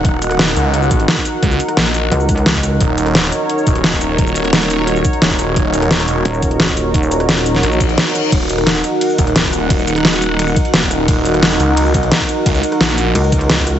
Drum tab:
CC |----------------|----------------|----------------|----------------|
RD |----------------|----------------|----------------|----------------|
HH |x-xxxxx-x-xxx-x-|x-xxxxx-x-xxx-x-|x-xxxxx-x-xxx-x-|x-xxxxx-x-xxx-x-|
SH |--x--xx--xx--xx-|-xx--xx--xx--xx-|--x--xx--xx--xx-|-xx--xx--xx--xx-|
SD |---ror------o---|---ror--r---o-r-|---ror------o---|---ror--r---o-r-|
BD |o---------o--o--|o---------o--o--|o---------o--o--|o---------o--o--|

CC |----------------|----------------|x---------------|----------------|
RD |----------------|----------------|b---b---b---b---|b---b---b---b---|
HH |x-xxxxx-x-xxx-x-|x-xxxxx-x-xxx-x-|x-xxxxx-x-xxx-x-|x-xxxxx-x-xxx-x-|
SH |--x--xx--xx--xx-|-xx--xx--xx--xx-|--x--xx--xx--xx-|-xx--xx--xx--xx-|
SD |---ror------o---|---ror-or---o-r-|---ror------o---|---ror--r---o-r-|
BD |o---------o--o--|o---------o-----|o---------o--o--|o---------o--o--|

CC |----------------|----------------|
RD |b---b---b---b---|b---b---b---b---|
HH |x-xxxxx-x-xxx-x-|x-xxxxx-x-xxx-x-|
SH |--x--xx--xx--xx-|-xx--xx--xx--xx-|
SD |---ror------o---|---ror--r---o-r-|
BD |o---------o--o--|o---------o--o--|